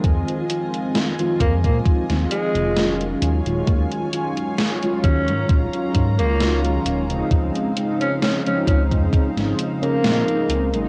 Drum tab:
HH |xxxxxxxxxxxxxxxx|xxxxxxxxxxxxxxxx|xxxxxxxxxxxxxxxx|
SD |----o----o--o---|----o-------o---|----o----o--o---|
BD |o-----ooo-------|o-----o-o-o-----|o-----ooo-------|